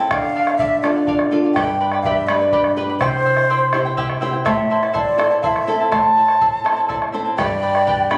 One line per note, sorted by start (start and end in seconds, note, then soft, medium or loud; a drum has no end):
0.00 0.11 E4 soft
0.00 0.10 A4 soft
0.00 0.08 G5 medium
0.00 0.10 A5 soft
0.08 1.51 D3 medium
0.08 0.34 A4 medium
0.08 0.57 F5 medium
0.08 0.12 G5 medium
0.08 bombo rim medium
0.08 bombo low medium
0.12 0.35 D5 medium
0.12 0.35 F5 medium
0.23 bombo rim soft
0.35 0.47 A4 medium
0.35 0.47 D5 medium
0.35 0.46 F5 soft
0.47 0.59 D5 soft
0.47 0.59 F5 soft
0.47 bombo rim medium
0.58 0.82 A4 medium
0.58 0.83 D5 medium
0.58 0.80 E5 medium
0.58 0.83 F5 medium
0.58 bombo low medium
0.81 1.29 D4 soft
0.81 1.30 F4 soft
0.81 0.95 A4 soft
0.81 1.30 A4 soft
0.81 1.32 D5 medium
0.81 0.95 D5 soft
0.81 0.95 F5 soft
0.81 bombo rim medium
0.95 1.07 D5 soft
0.95 1.07 F5 soft
0.95 bombo rim soft
1.07 1.31 A4 medium
1.07 1.31 D5 medium
1.07 1.32 F5 medium
1.07 bombo low medium
1.19 bombo rim medium
1.31 1.54 D4 soft
1.31 1.55 F4 soft
1.31 1.43 A4 medium
1.31 1.55 A4 medium
1.31 1.44 D5 soft
1.31 1.43 F5 medium
1.44 1.56 D5 soft
1.44 1.55 F5 soft
1.44 bombo rim soft
1.54 2.97 G2 medium
1.54 1.80 G4 medium
1.54 1.79 B4 medium
1.54 1.80 D5 medium
1.54 1.99 G5 medium
1.54 1.79 G5 medium
1.54 1.80 B5 medium
1.54 bombo rim medium
1.54 bombo low medium
1.80 1.92 B4 medium
1.80 1.92 D5 medium
1.80 1.92 G5 medium
1.80 1.92 B5 medium
1.92 2.04 B4 soft
1.92 2.05 D5 soft
1.92 2.04 B5 soft
1.92 bombo rim soft
2.02 2.29 G4 medium
2.02 2.28 B4 medium
2.02 2.29 D5 medium
2.02 2.07 F5 medium
2.02 2.28 G5 medium
2.02 bombo low medium
2.06 2.29 E5 medium
2.06 2.29 B5 medium
2.27 2.75 D4 soft
2.27 2.75 G4 soft
2.27 2.75 B4 soft
2.27 2.41 B4 medium
2.27 2.73 D5 medium
2.27 2.41 D5 soft
2.27 2.40 G5 soft
2.27 2.40 B5 medium
2.27 bombo rim medium
2.41 2.52 B4 soft
2.41 2.52 D5 soft
2.41 2.52 B5 soft
2.52 2.76 G4 medium
2.52 2.76 B4 medium
2.52 2.77 D5 medium
2.52 2.76 G5 medium
2.52 2.77 B5 medium
2.52 bombo low medium
2.64 bombo rim soft
2.76 3.00 D4 soft
2.76 3.00 G4 soft
2.76 3.00 B4 medium
2.76 2.89 B4 medium
2.76 2.89 D5 medium
2.76 2.89 G5 soft
2.76 2.88 B5 medium
2.89 3.01 B4 soft
2.89 3.01 D5 soft
2.89 3.01 B5 soft
3.00 4.42 C3 medium
3.00 3.25 E4 medium
3.00 3.25 G4 medium
3.00 3.93 C5 medium
3.00 3.25 C5 medium
3.00 3.24 E5 medium
3.00 3.25 G5 medium
3.00 bombo rim medium
3.00 bombo low medium
3.25 3.37 E4 medium
3.25 3.36 C5 medium
3.25 3.37 E5 medium
3.25 3.36 G5 medium
3.37 3.49 E4 soft
3.37 3.49 C5 soft
3.37 3.49 G5 soft
3.37 bombo rim medium
3.50 3.73 E4 medium
3.50 3.74 G4 medium
3.50 3.73 C5 medium
3.50 3.72 E5 medium
3.50 3.74 G5 medium
3.73 4.20 C4 soft
3.73 4.20 E4 soft
3.73 3.85 E4 medium
3.73 4.21 G4 soft
3.73 3.85 C5 medium
3.73 3.85 E5 medium
3.73 3.84 G5 medium
3.73 bombo rim medium
3.85 3.96 E4 soft
3.85 3.97 C5 medium
3.85 3.97 G5 medium
3.97 4.20 E4 medium
3.97 4.21 G4 medium
3.97 4.21 C5 medium
3.97 4.20 E5 medium
3.97 4.21 G5 medium
3.97 bombo low medium
4.10 bombo rim soft
4.21 4.45 C4 soft
4.21 4.33 E4 medium
4.21 4.45 E4 soft
4.21 4.45 G4 medium
4.21 4.32 C5 medium
4.21 4.33 E5 medium
4.21 4.32 G5 medium
4.33 4.45 E4 soft
4.33 4.44 C5 soft
4.33 4.45 G5 soft
4.45 5.87 A2 medium
4.45 4.70 E4 medium
4.45 4.70 A4 medium
4.45 4.70 C5 medium
4.45 4.69 E5 medium
4.45 4.93 E5 medium
4.45 4.70 A5 medium
4.45 bombo rim medium
4.45 bombo low medium
4.70 4.83 E4 medium
4.70 4.82 C5 medium
4.70 4.82 E5 medium
4.70 4.81 A5 medium
4.83 4.93 E4 soft
4.83 4.93 C5 soft
4.83 4.93 A5 soft
4.83 bombo rim soft
4.93 5.17 E4 medium
4.93 5.17 A4 medium
4.93 5.17 C5 medium
4.93 5.41 D5 medium
4.93 4.98 E5 medium
4.93 5.16 E5 medium
4.93 5.17 A5 medium
4.93 bombo low medium
5.18 5.65 C4 soft
5.18 5.30 E4 soft
5.18 5.65 E4 soft
5.18 5.66 A4 soft
5.18 5.30 C5 medium
5.18 5.30 E5 soft
5.18 5.29 A5 medium
5.18 bombo rim medium
5.31 5.42 E4 soft
5.31 5.43 C5 soft
5.31 5.43 A5 soft
5.42 5.67 E4 medium
5.42 5.67 A4 medium
5.42 5.67 C5 medium
5.42 5.66 E5 medium
5.42 5.47 F5 medium
5.42 5.68 A5 medium
5.42 bombo low medium
5.46 5.87 E5 medium
5.56 bombo rim medium
5.67 5.91 C4 soft
5.67 5.91 E4 soft
5.67 5.79 E4 medium
5.67 5.91 A4 medium
5.67 5.80 C5 soft
5.67 5.79 E5 medium
5.67 5.79 A5 medium
5.80 5.91 E4 soft
5.80 5.91 C5 soft
5.80 5.91 A5 soft
5.91 7.33 A2 medium
5.91 6.15 E4 medium
5.91 6.16 A4 medium
5.91 6.16 C5 medium
5.91 6.15 E5 medium
5.91 7.09 A5 medium
5.91 6.16 A5 medium
5.91 bombo rim medium
5.91 bombo low medium
6.05 bombo rim soft
6.16 6.28 E4 soft
6.16 6.28 C5 medium
6.16 6.28 E5 medium
6.16 6.27 A5 medium
6.28 6.40 E4 soft
6.28 6.40 C5 soft
6.28 6.40 A5 soft
6.28 bombo rim soft
6.41 6.64 E4 medium
6.41 6.64 A4 medium
6.41 6.64 C5 medium
6.41 6.63 E5 medium
6.41 6.65 A5 medium
6.41 bombo low medium
6.64 7.11 C4 soft
6.64 7.11 E4 soft
6.64 6.76 E4 medium
6.64 6.89 A4 soft
6.64 6.76 C5 medium
6.64 6.76 E5 medium
6.64 6.75 A5 medium
6.64 bombo rim medium
6.76 6.88 E4 soft
6.76 6.88 C5 soft
6.76 6.88 A5 medium
6.88 7.12 E4 medium
6.88 7.12 A4 medium
6.88 7.13 C5 medium
6.88 7.11 D5 medium
6.88 7.11 E5 medium
6.88 7.13 A5 medium
6.88 bombo rim soft
6.88 bombo low medium
7.02 bombo rim medium
7.12 7.37 C4 soft
7.12 7.25 E4 medium
7.12 7.37 E4 soft
7.12 7.37 A4 soft
7.12 7.24 C5 medium
7.12 7.36 C5 medium
7.12 7.25 E5 medium
7.12 7.24 A5 medium
7.25 7.37 E4 soft
7.25 7.37 C5 soft
7.25 7.37 A5 soft
7.37 8.18 G2 medium
7.37 7.62 G4 medium
7.37 7.61 B4 medium
7.37 8.18 D5 medium
7.37 7.62 D5 medium
7.37 8.18 G5 medium
7.37 7.61 G5 medium
7.37 7.62 B5 medium
7.37 bombo rim medium
7.37 bombo low medium
7.62 7.74 B4 medium
7.62 7.74 D5 medium
7.62 7.73 G5 medium
7.62 7.73 B5 medium
7.74 7.86 B4 soft
7.74 7.86 D5 soft
7.74 7.86 B5 soft
7.74 bombo rim soft
7.86 8.10 G4 medium
7.86 8.09 B4 medium
7.86 8.10 D5 medium
7.86 8.09 G5 medium
7.86 8.10 B5 medium
7.86 bombo low medium
8.10 8.18 B3 soft
8.10 8.18 D4 soft
8.10 8.18 G4 soft
8.10 8.18 B4 medium
8.10 8.18 D5 medium
8.10 8.18 G5 medium
8.10 8.18 B5 medium
8.10 bombo rim medium